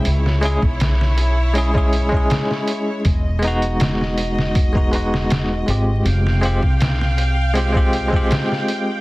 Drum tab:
HH |o-o-o-o-o-o-o-o-|o-oxo-o-o-o-o-o-|o-o-o-o-o-o-o-o-|
SD |-o--oo------oo--|----oo-o---oo---|-o--oo------oo--|
BD |---o-----o-o----|o-------oo------|---o-----o-o----|